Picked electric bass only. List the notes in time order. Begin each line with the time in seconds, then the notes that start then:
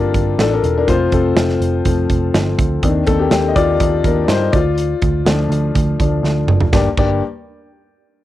Already playing: G1
0.14 G1
0.38 A1
0.63 E1
0.88 F1
1.12 F1
1.36 F1
1.60 F1
1.85 F1
2.10 F1
2.34 G1
2.58 D2
2.83 D#2
3.07 D#2
3.31 D#2
3.56 D#2
3.80 D#2
4.04 D#2
4.28 G2
4.53 D2
5.02 D2
5.25 D2
5.49 D2
5.75 D2
6.00 D2
6.23 D2
6.47 F#1
6.73 G1
6.97 G1